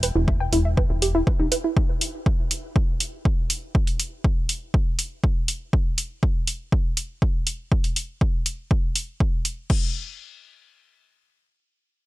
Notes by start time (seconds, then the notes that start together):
Already playing: E1
0.03 B4, open hi-hat
0.16 E1 E4
0.28 E5, kick
0.40 G5
0.53 E1 E4, open hi-hat
0.65 E5
0.77 B4, kick
0.90 E1 E4
1.02 G4, open hi-hat
1.15 E4
1.27 B4, kick
1.40 E1 D#4
1.52 B4, open hi-hat
1.64 E4
1.77 kick
2.01 open hi-hat
2.26 kick
2.51 open hi-hat
2.76 kick
3.00 open hi-hat
3.25 kick
3.50 open hi-hat
3.75 kick
3.87 open hi-hat
4.00 open hi-hat
4.24 kick
4.49 open hi-hat
4.74 kick
4.99 open hi-hat
5.24 kick
5.48 open hi-hat
5.73 kick
5.98 open hi-hat
6.23 kick
6.47 open hi-hat
6.72 kick
6.97 open hi-hat
7.22 kick
7.47 open hi-hat
7.72 kick
7.84 open hi-hat
7.96 open hi-hat
8.21 kick
8.46 open hi-hat
8.71 kick
8.96 open hi-hat
9.20 kick
9.45 open hi-hat
9.70 kick, crash